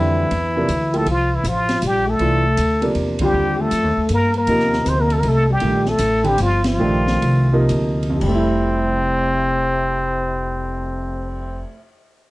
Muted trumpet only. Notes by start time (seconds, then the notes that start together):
Already playing: E4
0.97 A4
1.09 F4
1.35 E4
1.48 F4
1.87 G4
2.10 A4
3.24 G4
3.61 A4
4.14 A#4
4.38 A#4
4.89 C5
5.01 A#4
5.13 A4
5.19 A#4
5.28 A4
5.52 G4
5.89 A4
6.28 G4
6.42 F4
6.68 F4
8.23 C4